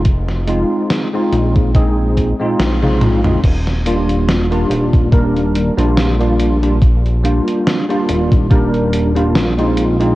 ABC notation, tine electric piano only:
X:1
M:4/4
L:1/16
Q:"Swing 16ths" 1/4=71
K:Eb
V:1 name="Tine electric piano"
z2 [A,CEF]3 [A,CEF]3 [A,CEA]3 [A,CEF]2 [A,CEF]2 [A,CEF] | z2 [G,B,DF]3 [G,B,DF]3 [G,B,DB]3 [G,B,DF]2 [G,B,DF]2 [G,B,DF] | z2 [G,B,DF]3 [G,B,DF]3 [G,B,DB]3 [G,B,DF]2 [A,CEF]2 [A,CEF] |]